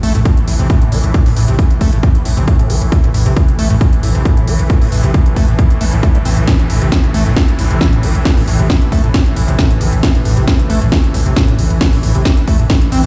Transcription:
Already playing: synth drone A2 E3
0.03 808-style bass A1, acid bass A3, open hi-hat
0.15 808-style bass A1, acid bass A2, closed hi-hat
0.25 acid bass A2, kick, closed hi-hat
0.37 closed hi-hat
0.48 808-style bass A1, acid bass A2, open hi-hat
0.59 808-style bass A1, acid bass C3, closed hi-hat
0.70 acid bass A2, kick, closed hi-hat
0.82 closed hi-hat
0.92 808-style bass A1, acid bass E3, open hi-hat
1.04 808-style bass A1, closed hi-hat
1.14 acid bass A2, kick, closed hi-hat
1.26 acid bass A2, open hi-hat
1.36 808-style bass A1, acid bass A2, open hi-hat
1.48 808-style bass A1, acid bass C3, closed hi-hat
1.59 kick, closed hi-hat
1.70 closed hi-hat
1.81 808-style bass A1, acid bass A3, kick, open hi-hat
1.93 808-style bass A1, acid bass A2, closed hi-hat
2.03 acid bass A2, kick, closed hi-hat
2.15 closed hi-hat
2.25 808-style bass A1, acid bass A2, open hi-hat
2.37 808-style bass A1, acid bass C3, closed hi-hat
2.48 acid bass A2, kick, closed hi-hat
2.59 closed hi-hat
2.70 808-style bass A1, acid bass E3, open hi-hat
2.82 808-style bass A1, closed hi-hat
2.92 acid bass A2, kick, closed hi-hat
3.04 acid bass A2, closed hi-hat
3.14 808-style bass A1, acid bass A2, open hi-hat
3.26 808-style bass A1, acid bass C3, closed hi-hat
3.37 kick, closed hi-hat
3.48 closed hi-hat
3.59 808-style bass A1, acid bass A3, open hi-hat
3.70 808-style bass A1, acid bass A2, closed hi-hat
3.81 acid bass A2, kick, closed hi-hat
3.93 closed hi-hat
4.03 808-style bass A1, acid bass A2, open hi-hat
4.15 808-style bass A1, acid bass C3, closed hi-hat
4.25 acid bass A2, kick, closed hi-hat
4.37 closed hi-hat
4.48 808-style bass A1, acid bass E3, open hi-hat
4.59 808-style bass A1, closed hi-hat
4.70 acid bass A2, kick, closed hi-hat
4.82 acid bass A2, open hi-hat
4.92 808-style bass A1, acid bass A2, open hi-hat
5.04 808-style bass A1, acid bass C3, closed hi-hat
5.14 kick, closed hi-hat
5.26 closed hi-hat
5.36 808-style bass A1, acid bass A3, kick, open hi-hat
5.48 808-style bass A1, acid bass A2, closed hi-hat
5.59 acid bass A2, kick, closed hi-hat
5.70 closed hi-hat
5.81 808-style bass A1, acid bass A3, open hi-hat
5.93 808-style bass A1, acid bass A2, closed hi-hat
6.03 acid bass A3, kick, closed hi-hat
6.15 acid bass G3, closed hi-hat
6.25 808-style bass A1, acid bass C4, open hi-hat
6.37 808-style bass A1, closed hi-hat
6.48 acid bass A2, kick, snare, closed hi-hat
6.59 acid bass A2, closed hi-hat
6.70 808-style bass A1, acid bass A2, open hi-hat
6.82 808-style bass A1, acid bass C3, closed hi-hat
6.92 kick, snare, closed hi-hat
7.04 closed hi-hat
7.14 808-style bass A1, acid bass A3, open hi-hat
7.26 808-style bass A1, acid bass A2, closed hi-hat
7.36 acid bass A2, kick, snare, closed hi-hat
7.48 closed hi-hat
7.59 808-style bass A1, acid bass A2, open hi-hat
7.70 808-style bass A1, acid bass C3, closed hi-hat
7.81 acid bass A2, kick, snare, closed hi-hat
7.93 closed hi-hat
8.03 808-style bass A1, acid bass E3, open hi-hat
8.15 808-style bass A1, closed hi-hat
8.25 acid bass A2, kick, snare, closed hi-hat
8.37 acid bass A2, open hi-hat
8.48 808-style bass A1, acid bass A2, open hi-hat
8.59 808-style bass A1, acid bass C3, closed hi-hat
8.70 kick, snare, closed hi-hat
8.82 closed hi-hat
8.92 808-style bass A1, acid bass A3, kick, open hi-hat
9.04 808-style bass A1, acid bass A2, closed hi-hat
9.14 acid bass A2, kick, snare, closed hi-hat
9.26 closed hi-hat
9.36 808-style bass A1, acid bass A2, open hi-hat
9.48 808-style bass A1, acid bass C3, closed hi-hat
9.59 acid bass A2, kick, snare, closed hi-hat
9.70 closed hi-hat
9.81 808-style bass A1, acid bass E3, open hi-hat
9.93 808-style bass A1, closed hi-hat
10.03 acid bass A2, kick, snare, closed hi-hat
10.15 acid bass A2, closed hi-hat
10.25 808-style bass A1, acid bass A2, open hi-hat
10.37 808-style bass A1, acid bass C3, closed hi-hat
10.48 kick, snare, closed hi-hat
10.59 closed hi-hat
10.70 808-style bass A1, acid bass A3, open hi-hat
10.82 808-style bass A1, acid bass A2, closed hi-hat
10.92 acid bass A2, kick, snare, closed hi-hat
11.04 closed hi-hat
11.14 808-style bass A1, acid bass A2, open hi-hat
11.26 808-style bass A1, acid bass C3, closed hi-hat
11.36 acid bass A2, kick, snare, closed hi-hat
11.48 closed hi-hat
11.59 808-style bass A1, acid bass E3, open hi-hat
11.70 808-style bass A1, closed hi-hat
11.81 acid bass A2, kick, snare, closed hi-hat
11.93 acid bass A2, open hi-hat
12.03 808-style bass A1, acid bass A2, open hi-hat
12.15 808-style bass A1, acid bass C3, closed hi-hat
12.25 kick, snare, closed hi-hat
12.37 closed hi-hat
12.48 808-style bass A1, acid bass A3, kick, open hi-hat
12.59 808-style bass A1, acid bass A2, closed hi-hat
12.70 acid bass A2, kick, snare, closed hi-hat
12.82 closed hi-hat
12.92 808-style bass A1, acid bass C4, open hi-hat

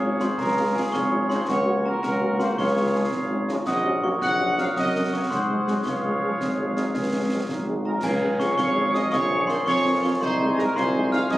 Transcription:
Already playing: tuba G#1, woodwind section G#4 F5, trumpet section C#5, glockenspiel C#6
0.02 french horn section G#3 C#4 F4
0.20 trombone section F3 G#3, french horn section G#3 C#4 F4, trumpet section C5, glockenspiel C6, snare
0.38 tuba C#2, trumpet section A#4, glockenspiel A#5, concert bass drum, snare
0.57 french horn section G#3 C#4 F4
0.74 trombone section F3 G#3, french horn section G#3 C#4 F4, trumpet section G#4, glockenspiel G#5
0.92 tuba G#1, woodwind section G#4 F5, trumpet section C#5, glockenspiel C#6, concert bass drum, snare
1.10 french horn section G#3 C#4 F4
1.29 trombone section F3 G#3, french horn section G#3 C#4 F4, trumpet section C5, glockenspiel C6, snare
1.49 tuba C#2, woodwind section A#4 F#5, trumpet section C#5, glockenspiel C#6, concert bass drum, snare
1.65 french horn section A#3 C#4 F#4
1.84 trombone section F#3 A#3, french horn section A#3 C#4 F#4, trumpet section A#4, glockenspiel A#5
2.02 tuba C#2, trumpet section A#4, woodwind section A#4 F#5, glockenspiel A#5, concert bass drum, snare
2.20 french horn section A#3 C#4 F#4
2.39 trombone section F#3 A#3, french horn section A#3 C#4 F#4, trumpet section C5, glockenspiel C6, snare
2.58 tuba C#2, woodwind section G#4 F5, trumpet section C#5, glockenspiel C#6, concert bass drum, snare
2.75 french horn section G#3 C#4 F4
2.93 trombone section F3 G#3, french horn section G#3 C#4 F4
3.12 tuba G#1, concert bass drum, snare
3.30 french horn section G#3 C#4 F4
3.49 trombone section F3 G#3, french horn section G#3 C#4 F4, snare
3.66 tuba A#1, woodwind section A#4 F#5, trumpet section D#5, glockenspiel D#6, concert bass drum, snare, crash
3.85 french horn section F#3 C#4 F#4
4.03 trombone section F#3 A#3, french horn section F#3 C#4 F#4, trumpet section C#5, glockenspiel C#6
4.22 tuba A#1, woodwind section A#4 F#5, trumpet section F#5, glockenspiel F#6, concert bass drum, snare
4.40 french horn section F#3 C#4 F#4
4.58 french horn section F#3 C#4 F#4, trombone section F#3 A#3, trumpet section F5, glockenspiel F6, snare
4.76 tuba F#2, woodwind section A#4 F#5, trumpet section D#5, glockenspiel D#6, concert bass drum, snare
4.95 french horn section F#3 C#4 A#4
5.13 french horn section F#3 C#4 A#4, trombone section F#3 A#3, trumpet section C#5, glockenspiel C#6
5.30 tuba G#2, woodwind section G#4 F#5, trumpet section C5, glockenspiel C6, concert bass drum, snare
5.50 french horn section F#3 G#3 G#4
5.68 french horn section F#3 G#3 G#4, trombone section F#3 G#3, trumpet section C5, glockenspiel C6, snare
5.85 tuba C#2, woodwind section G#4 F5, trumpet section C#5, glockenspiel C#6, concert bass drum, snare
6.04 french horn section F3 G#3 G#4
6.22 french horn section F3 G#3 G#4, trombone section F3 G#3
6.41 tuba G#1, euphonium G#3, concert bass drum, snare
6.59 french horn section F3 G#3 G#4
6.74 french horn section F3 G#3 G#4, trombone section F3 G#3, euphonium D#4, snare
6.94 tuba C#2, euphonium C#4, concert bass drum, snare
7.13 french horn section F3 G#3 G#4
7.30 trombone section F3 G#3, french horn section F3 G#3 G#4, euphonium C4
7.48 tuba G#1, euphonium A#3, concert bass drum, snare
7.68 french horn section F3 G#3 G#4
7.84 trombone section F3 G#3, french horn section F3 G#3 G#4, euphonium G#3, trumpet section A#4, piccolo A#5, glockenspiel A#5
8.02 tuba C#2, trombone section F3 G#3, euphonium F4, woodwind section G#4 F5, trumpet section G#4, piccolo G#5, glockenspiel G#5, concert bass drum, snare, crash
8.22 french horn section F3 C#4 G#4
8.39 french horn section F3 C#4 G#4, trumpet section C#5, glockenspiel C#6, piccolo C#6, snare
8.58 tuba G#1, woodwind section G#4 F5, trumpet section C#5, glockenspiel C#6, piccolo C#6, concert bass drum, snare
8.75 french horn section F3 C#4 G#4
8.94 french horn section F3 C#4 G#4, trumpet section D#5, glockenspiel D#6, piccolo D#6, snare
9.12 tuba A#1, trombone section A#3, euphonium C#4, woodwind section F4 F5, trumpet section C#5, glockenspiel C#6, piccolo C#6, concert bass drum, snare
9.31 french horn section F3 F4 A#4
9.47 french horn section F3 F4 A#4, trumpet section C5, glockenspiel C6, piccolo C6, snare
9.66 tuba F2, euphonium C#4, woodwind section F4 F5, trumpet section C#5, glockenspiel C#6, piccolo C#6, concert bass drum, snare
9.85 french horn section F3 F4 A#4
10.02 french horn section F3 F4 A#4, trumpet section C#5, piccolo C#6, glockenspiel C#6
10.21 tuba C2, euphonium D#4, woodwind section D#4 G#5, trumpet section C5, glockenspiel C6, piccolo C6, concert bass drum, snare
10.40 french horn section G#3 D#4 G#4
10.57 french horn section G#3 D#4 G#4, trumpet section A#4, glockenspiel A#5, piccolo A#5, snare
10.75 tuba C2, woodwind section D#4 G#5, euphonium F4, trumpet section C5, piccolo C6, glockenspiel C6, concert bass drum, snare
10.95 french horn section G#3 D#4 G#4
11.12 french horn section G#3 D#4 G#4, trumpet section F5, piccolo F6, glockenspiel F6, snare
11.30 tuba C2, trombone section D#3 G#3, euphonium D#4, woodwind section D#4 G#5, trumpet section D#5, piccolo D#6, glockenspiel D#6, concert bass drum, snare

